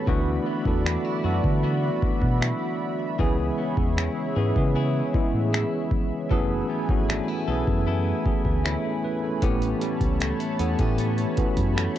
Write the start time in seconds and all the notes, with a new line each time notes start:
Already playing: B3 C#4 B5
0.07 D2 D3 E3 A3 B3 D4 F#4 D5 E5, kick
0.46 B3
0.66 E2 E3 A3 B3 D4 A4, kick
0.85 D4, finger snap
1.05 E4
1.24 F#2 E3 A3 B3 D4 F#4 A4
1.44 D3, kick
1.63 B3 E4 F#4
2.03 muted fingered electric bass stroke, kick
2.22 B2, kick
2.41 E4, finger snap
3.19 C#2 C#3 E3 G#3 B3 C#4 G#4 C#5, kick
3.58 B3
3.77 E2, kick
3.97 E4, finger snap
4.36 G#2 E3 G#3 B3 C#4 G#4
4.56 C#3 E3 G#3 B3 C#4 G#4, kick
4.75 B3 E4 G#4
5.14 E3 G#3 B3 C#4 E4, muted fingered electric bass stroke, kick
5.33 A2
5.53 E4, finger snap
5.91 kick
6.31 F#1 E3 F#3 A3 B3 C#4 G#4 A4 G#5 B5, kick
6.70 B3
6.89 G#1 E3 A3 B3 C#4 F#4, kick
7.09 D4, finger snap
7.28 E4
7.48 B1 E3 A3 B3 C#4 G#4 A4
7.67 F#2, kick
7.87 B3 E4 A4
8.26 B3 G#4, muted fingered electric bass stroke, kick
8.45 D2 B4, kick
8.65 E4 C#5, finger snap
8.85 C#4 A4
9.04 B4
9.24 C#4 A4
9.42 A1 A2 E3 A3 B3 C4 C#4 G4 C#5 A5, kick, closed hi-hat
9.50 C#4
9.62 closed hi-hat
9.81 G3, closed hi-hat
10.01 C#2, kick, closed hi-hat
10.20 A3, finger snap, closed hi-hat
10.40 B3, closed hi-hat
10.59 E2 E3 A3 B3 C#4 A4, closed hi-hat
10.79 A2 E3 A3 B3 C#4 G4, kick, closed hi-hat
10.98 B3 C#4, closed hi-hat
11.18 closed hi-hat
11.37 E3 A3 B3 C#4 F#4, muted fingered electric bass stroke, kick, closed hi-hat
11.57 F#2, kick, closed hi-hat
11.76 A3, finger snap